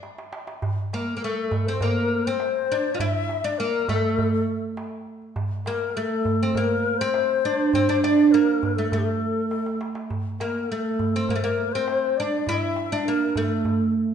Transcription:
0.03 darbuka tek
0.18 darbuka ka
0.33 darbuka tek
0.47 darbuka ka
0.62 darbuka dum
0.78 darbuka ka
0.93 oud A#3, shakuhachi A#4, darbuka tek
1.17 oud A#3
1.21 oud A3, shakuhachi A4
1.51 darbuka dum
1.67 oud C4, shakuhachi C5
1.81 oud A#3, shakuhachi A#4, darbuka dum
2.26 oud C4, shakuhachi C5
2.40 darbuka tek
2.70 oud D4, darbuka ka
2.85 darbuka ka
2.94 oud F4
3.00 oud E4, shakuhachi E5, darbuka dum
3.14 darbuka ka
3.29 darbuka tek
3.44 oud D4, shakuhachi D5
3.59 oud A#3, shakuhachi A#4
3.88 oud A3, shakuhachi A4, darbuka dum
4.18 darbuka dum
4.34 shakuhachi A4
4.47 darbuka ka
4.77 darbuka tek
5.07 darbuka ka
5.22 darbuka ka
5.36 darbuka dum
5.52 darbuka ka
5.66 oud A#3, shakuhachi A#4, darbuka tek
5.94 oud A3, shakuhachi A4
6.25 darbuka dum
6.43 oud C4
6.54 oud A#3, shakuhachi A#4, darbuka dum
6.84 darbuka ka
6.98 oud C4, shakuhachi C5
7.14 darbuka tek
7.44 oud D4, darbuka ka
7.59 darbuka ka
7.73 oud C4, shakuhachi C5, darbuka dum
7.89 oud D4
8.03 oud D4, shakuhachi D5, darbuka tek
8.18 darbuka ka
8.32 oud A#3, shakuhachi A#4
8.48 darbuka ka
8.63 darbuka dum
8.76 oud A3, shakuhachi A4
8.91 oud A3, shakuhachi A4, darbuka dum
8.98 shakuhachi G4
9.05 shakuhachi A4
9.23 darbuka ka
9.49 shakuhachi A4, darbuka tek
9.66 darbuka ka
9.81 darbuka tek
9.95 darbuka ka
10.10 darbuka dum
10.26 darbuka ka
10.40 oud A#3, shakuhachi A#4, darbuka tek
10.70 oud A3, shakuhachi A4
10.99 darbuka dum
11.16 oud C4
11.29 oud A#3, shakuhachi A#4, darbuka dum
11.36 oud A3
11.43 oud A#3, shakuhachi A#4
11.58 darbuka ka
11.73 oud C4, shakuhachi C5
11.88 darbuka tek
12.17 oud D4, shakuhachi D5, darbuka ka
12.47 oud E4, shakuhachi E5, darbuka dum
12.61 darbuka ka
12.76 darbuka tek
12.92 oud D4
13.07 oud A#3, shakuhachi A#4
13.29 shakuhachi A#4
13.35 oud A3, shakuhachi A4, darbuka dum
13.65 darbuka dum
13.95 darbuka ka

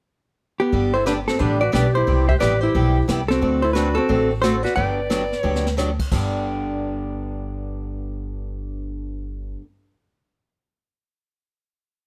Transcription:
0.60 hollow-body jazz guitar B3 G4
0.72 upright bass G1, steel-string acoustic guitar D3 G3 B3 D4 G4, brush sweep, kick
0.94 hollow-body jazz guitar E4 C5, clarinet A4
1.06 steel-string acoustic guitar D3 G3 B3 D4 G4, hollow-body jazz guitar D4 B4, clarinet G4, snare, hi-hat pedal
1.27 hollow-body jazz guitar C4 A4, clarinet F#4, snare
1.38 upright bass A1, steel-string acoustic guitar D3 G3 B3 D4 G4, hollow-body jazz guitar D4 B4, clarinet G4, brush sweep, kick
1.61 hollow-body jazz guitar F#4 D5, clarinet B4
1.72 upright bass B1, steel-string acoustic guitar D3 G3 B3 D4 G4, hollow-body jazz guitar G4 D5, clarinet B4, snare, hi-hat pedal
1.93 clarinet G4, hollow-body jazz guitar C5
1.97 hollow-body jazz guitar E4
2.07 upright bass C2, steel-string acoustic guitar C3 G3 B3 E4 G4, brush sweep, kick
2.27 hollow-body jazz guitar G4 E5, clarinet C5, kick
2.39 upright bass A1, steel-string acoustic guitar C3 G3 B3 E4 G4, clarinet B4, hollow-body jazz guitar D5, snare, hi-hat pedal
2.43 hollow-body jazz guitar G4
2.61 hollow-body jazz guitar E4 C5, clarinet G4
2.75 upright bass B1, steel-string acoustic guitar C3 G3 B3 E4 G4, brush sweep, kick
3.08 upright bass C2, steel-string acoustic guitar C3 G3 B3 E4 G4, snare, hi-hat pedal
3.28 hollow-body jazz guitar C4 A4, clarinet F#4, snare
3.42 upright bass D2, steel-string acoustic guitar D3 A3 C4 F#4 A4, brush sweep, kick
3.62 hollow-body jazz guitar E4 C5, clarinet A4
3.73 steel-string acoustic guitar D3 A3 C4 F#4 A4, hollow-body jazz guitar D4 B4, clarinet F#4, snare, hi-hat pedal
3.95 hollow-body jazz guitar C4 A4, clarinet F#4
4.09 upright bass A1, steel-string acoustic guitar D3 A3 C4 F#4 A4, brush sweep, kick
4.42 steel-string acoustic guitar D3 A3 C4 F#4 A4, hollow-body jazz guitar F#4 C5, clarinet A4, snare, hi-hat pedal
4.63 hollow-body jazz guitar F#4 D5, clarinet B4, snare
4.75 upright bass G1, steel-string acoustic guitar D3 F#3 B3 D4 G4, hollow-body jazz guitar B4 G5, clarinet D5, brush sweep, kick
5.10 steel-string acoustic guitar D3 F#3 B3 D4 G4, snare, hi-hat pedal
5.32 snare
5.41 upright bass D2, steel-string acoustic guitar D3 F#3 B3 D4 G4, clarinet C#5, hollow-body jazz guitar F#5
5.55 snare
5.66 snare
5.77 steel-string acoustic guitar D3 F#3 B3 D4 G4, snare, hi-hat pedal
5.99 kick, crash
6.11 upright bass G1, steel-string acoustic guitar G2 D3 B3 D4 G4, kick, crash

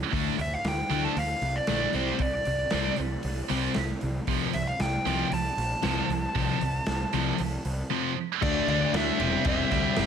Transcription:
0.12 picked electric bass D2, distorted electric guitar D3 A3 D4, kick, open hi-hat
0.38 picked electric bass D2, lead electric guitar E5, open hi-hat
0.54 lead electric guitar F5
0.64 picked electric bass D2, lead electric guitar G5, snare, open hi-hat
0.90 picked electric bass D2, distorted electric guitar D3 A3 D4, open hi-hat
1.05 lead electric guitar A5
1.16 picked electric bass D2, lead electric guitar F5, open hi-hat
1.41 picked electric bass C2, open hi-hat
1.56 lead electric guitar D5
1.67 picked electric bass A#1, distorted electric guitar D3 A3 D4, snare, open hi-hat
1.93 picked electric bass C2, distorted electric guitar C3 G3 C4, lead electric guitar C5, open hi-hat
2.19 picked electric bass C2, lead electric guitar D5, kick, open hi-hat
2.45 picked electric bass C2, open hi-hat
2.70 picked electric bass C2, distorted electric guitar C3 G3 C4, snare, open hi-hat
2.96 picked electric bass C2, open hi-hat
3.23 picked electric bass C2, open hi-hat
3.49 picked electric bass C2, distorted electric guitar C3 G3 C4, open hi-hat
3.74 picked electric bass C2, snare, open hi-hat
4.01 picked electric bass C2, open hi-hat
4.27 picked electric bass C2, distorted electric guitar F2 C3 F3, kick, open hi-hat
4.53 picked electric bass C2, lead electric guitar E5, open hi-hat
4.67 lead electric guitar F5
4.80 picked electric bass C2, lead electric guitar G5, snare, open hi-hat
5.05 picked electric bass C2, distorted electric guitar F2 C3 F3, open hi-hat
5.32 picked electric bass C2, lead electric guitar A5, open hi-hat
5.57 picked electric bass A#1, open hi-hat
5.82 picked electric bass C2, distorted electric guitar F2 C3 F3, snare, open hi-hat
6.09 picked electric bass C2, snare, open hi-hat
6.35 picked electric bass C2, distorted electric guitar F2 C3 F3, kick, open hi-hat
6.61 picked electric bass C2, open hi-hat
6.86 picked electric bass C2, snare, open hi-hat
7.13 picked electric bass C2, distorted electric guitar F2 C3 F3, open hi-hat
7.38 picked electric bass C2, open hi-hat
7.65 picked electric bass C2, open hi-hat
7.90 distorted electric guitar F2 C3 F3
8.42 picked electric bass D2, distorted electric guitar D3 A3 D4, lead electric guitar D5, kick, crash
8.67 picked electric bass D2, distorted electric guitar D3 A3 D4, lead electric guitar D5, crash
8.93 picked electric bass D2, distorted electric guitar D3 A3 D4, lead electric guitar E5, snare, crash
9.19 picked electric bass E1, distorted electric guitar C3 G3 C4, crash
9.45 picked electric bass E1, distorted electric guitar C3 G3 C4, lead electric guitar E5, kick, crash
9.71 picked electric bass D2, distorted electric guitar C3 G3 C4, kick, snare, crash
9.96 picked electric bass G1, distorted electric guitar C3 G3 C4, snare, crash

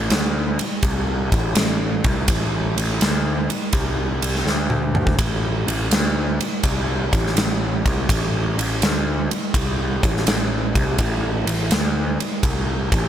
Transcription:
0.10 picked electric bass D2, snare, ride
0.59 muted picked electric bass stroke, ride
0.83 picked electric bass C2, kick, ride
1.32 picked electric bass A1, kick, ride
1.55 picked electric bass A1, snare, ride
2.04 picked electric bass C2, kick, ride
2.28 picked electric bass A1, kick, ride
2.77 picked electric bass A1, ride
3.01 picked electric bass D2, snare, ride
3.50 muted picked electric bass stroke, ride
3.73 picked electric bass C2, kick, ride
4.22 ride
4.35 snare
4.46 picked electric bass D2, snare
4.70 mid tom
4.95 mid tom
5.07 kick
5.18 picked electric bass A1, kick, ride
5.67 picked electric bass A1, ride
5.91 picked electric bass D2, snare, ride
6.40 muted picked electric bass stroke, ride
6.63 picked electric bass C2, kick, ride
7.13 picked electric bass A1, kick, ride
7.27 snare
7.37 picked electric bass A1, snare, ride
7.85 picked electric bass C2, kick, ride
8.09 picked electric bass A1, kick, ride
8.58 picked electric bass A1, ride
8.82 picked electric bass D2, snare, ride
9.31 muted picked electric bass stroke, ride
9.54 picked electric bass C2, kick, ride
10.03 picked electric bass A1, kick, ride
10.17 snare
10.27 picked electric bass A1, snare, ride
10.75 picked electric bass C2, kick, ride
10.98 picked electric bass A1, kick, ride
11.47 picked electric bass A1, ride
11.71 picked electric bass D2, snare, ride
12.20 muted picked electric bass stroke, ride
12.43 picked electric bass C2, kick, ride
12.92 picked electric bass A1, kick, ride

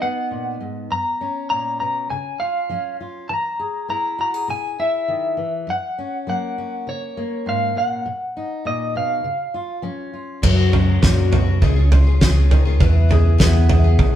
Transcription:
Already playing: steel-string acoustic guitar F#2 D#4
0.02 steel-string acoustic guitar B3, clean electric guitar F#5
0.31 steel-string acoustic guitar A#2
0.61 steel-string acoustic guitar G#2
0.91 steel-string acoustic guitar F#2, clean electric guitar A#5
1.21 steel-string acoustic guitar C#4
1.50 steel-string acoustic guitar A#2, clean electric guitar A#5
1.80 steel-string acoustic guitar B2, clean electric guitar A#5
2.10 steel-string acoustic guitar C#3, clean electric guitar G#5
2.40 steel-string acoustic guitar F4, clean electric guitar F5
2.69 steel-string acoustic guitar F3 C#4
3.01 steel-string acoustic guitar F4
3.29 steel-string acoustic guitar E3, clean electric guitar A#5
3.60 steel-string acoustic guitar G#4
3.88 steel-string acoustic guitar B3 E4, clean electric guitar A#5
4.18 steel-string acoustic guitar F#4, clean electric guitar A#5
4.34 steel-string acoustic guitar G#4
4.48 steel-string acoustic guitar B2, clean electric guitar G#5
4.79 steel-string acoustic guitar E4, clean electric guitar E5
5.08 steel-string acoustic guitar D#3
5.37 steel-string acoustic guitar E3
5.67 steel-string acoustic guitar F#2, clean electric guitar F#5
5.98 steel-string acoustic guitar C#4
6.27 steel-string acoustic guitar F#3 A#3, clean electric guitar F#5
6.58 steel-string acoustic guitar C#4
6.87 steel-string acoustic guitar C#3, clean electric guitar C#5
7.17 steel-string acoustic guitar A#3
7.46 steel-string acoustic guitar G#2, clean electric guitar F5
7.75 steel-string acoustic guitar A#2, clean electric guitar F#5
8.06 steel-string acoustic guitar B2
8.37 steel-string acoustic guitar D#4
8.65 steel-string acoustic guitar A#2, clean electric guitar D#5
8.95 steel-string acoustic guitar B2, clean electric guitar F5
9.24 steel-string acoustic guitar C#3
9.54 steel-string acoustic guitar F4
9.82 steel-string acoustic guitar F3 C#4
10.13 steel-string acoustic guitar F4
10.42 steel-string acoustic guitar F#2, fingered electric bass F#2, twelve-string acoustic guitar F#2 C#3 F#3 C#4 F#4 A#4, kick, floor tom, crash
10.72 twelve-string acoustic guitar F#3 C#4 F#4 A#4, steel-string acoustic guitar C#4, floor tom
11.02 twelve-string acoustic guitar F#2 C#3 F#3 C#4 F#4 A#4, fingered electric bass F#2, steel-string acoustic guitar A#2, kick, snare, floor tom
11.31 steel-string acoustic guitar B2, twelve-string acoustic guitar F#3 C#4 F#4 A#4, floor tom
11.61 fingered electric bass C#2, steel-string acoustic guitar C#3, twelve-string acoustic guitar C#3 G#3 C#4 F4 G#4, kick, floor tom
11.76 twelve-string acoustic guitar C#4 F4 G#4
11.91 twelve-string acoustic guitar G#3 C#4 F4, steel-string acoustic guitar F4, floor tom
11.95 twelve-string acoustic guitar G#4
12.07 twelve-string acoustic guitar C#4 F4 G#4
12.21 steel-string acoustic guitar C#3, twelve-string acoustic guitar C#3 G#3 C#4 F4 G#4, kick, snare, floor tom
12.50 steel-string acoustic guitar D#3, twelve-string acoustic guitar G#3 C#4 F4 G#4, floor tom
12.65 twelve-string acoustic guitar C#4 F4 G#4
12.80 fingered electric bass E2, steel-string acoustic guitar E3, twelve-string acoustic guitar E3 B3 E4 G#4, kick, floor tom
13.09 twelve-string acoustic guitar E3 B3 E4 G#4, steel-string acoustic guitar G#4, floor tom
13.38 fingered electric bass E2, twelve-string acoustic guitar E3 B3 E4 G#4, steel-string acoustic guitar B3 G#4, kick, snare, floor tom
13.69 twelve-string acoustic guitar E3 B3 E4 G#4, steel-string acoustic guitar G#4, floor tom
13.84 twelve-string acoustic guitar B3 E4 G#4
13.99 fingered electric bass B1, steel-string acoustic guitar G#4, kick, floor tom

